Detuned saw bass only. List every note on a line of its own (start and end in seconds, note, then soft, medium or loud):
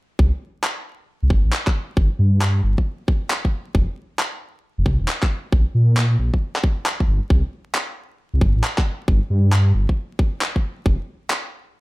0.19 0.31 C2 loud
1.23 1.29 C2 medium
1.30 1.42 G1 medium
1.45 1.51 A1 medium
1.97 2.09 G1 medium
2.19 2.61 G2 medium
2.64 2.75 G1 medium
3.75 3.86 F1 loud
4.78 4.84 F1 medium
4.86 4.98 C2 medium
5.00 5.07 D#1 medium
5.52 5.64 A#1 loud
5.75 6.17 A#2 medium
6.19 6.31 A#1 medium
7.08 7.20 G1 medium
7.30 7.42 C2 loud
8.34 8.40 C2 medium
8.41 8.53 G1 loud
8.56 8.62 A1 medium
9.08 9.20 G1 loud
9.30 9.72 G2 medium
9.75 9.86 G1 medium
10.86 10.98 F1 loud